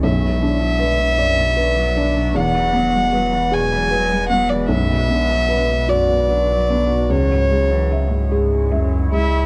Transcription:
0.02 B1 F#2 F#3 F#4 D5 E5
0.21 B2
0.41 D3 D4
0.61 F#3
0.80 D3 B4
0.99 B2
1.18 F#2 D5
1.37 B2
1.57 D3 B4
1.77 F#3
1.96 D3 D4
2.16 B2
2.35 E1 E2 B2 G#3 B4 F#5
2.54 E3
2.73 F#3 B3
2.94 G#3
3.13 F#3 B4
3.32 E3
3.52 B2 G#4 G#5
3.72 E3
3.91 F#3 B4
4.12 G#3
4.29 F#3 B3 F#5
4.49 E3 D5
4.69 B1 F#2 F#3 F#4 E5
4.91 B2
5.08 D3 B3
5.31 F#3
5.49 D3 B4
5.70 B2
5.88 F#2 F#4 D5
6.11 B2
6.29 D3 B4
6.52 F#3
6.70 D3 B3
6.91 B2
7.09 C#2 E2 G#3 E4 C#5
7.32 G#2
7.51 C#3 G#3
7.72 E3
7.92 C#3 E5
8.11 G#2
8.32 G#2 G#4
8.71 F#2 E5
9.12 G#3 E4 E5

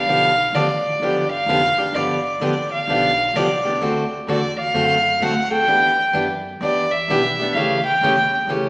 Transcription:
Already playing: F5
0.06 B1 D3 F3 B3 D4 G4
0.53 A1 D3 F3 B3 D4 G4 D5
1.00 G1 D3 F3 B3 D4 G4
1.31 F5
1.46 F1 D3 F3 B3 D4 G4
1.76 D4 G4, muted upright bass stroke
1.80 B3
1.93 G1 D3 F3 B3 D4 D5
1.97 G4
2.40 A1 D3 F3 B3 D4 G4
2.72 F5
2.87 B1 D3 F3 B3 D4 G4
3.34 C2 D3 F3 B3 D4 G4 D5
3.65 B3 D4 G4
3.81 D2 D3 A3 C4 F#4 A4
4.27 E2 D3 A3 C4 F#4 A4 D5
4.59 F5
4.74 F#2 D3 A3 C4 F#4 A4
5.20 A2 D3 A3 C4 F#4 A4 F#5
5.51 C4 F#4 A4 G5
5.67 E2 E3 B3 D4 G4
6.13 F#2 E3 B3 D4 G4
6.61 E2 E3 B3 D4 G4 D5
6.92 E5
7.08 B1 E3 B3 D4 G4
7.40 B3 D4 G4
7.55 A1 C#3 E3 A3 C#4 G4 F5
7.85 G5
8.01 G1 C#3 E3 A3 C#4 G4
8.47 A1 C#3 E3 A3 C#4 G4

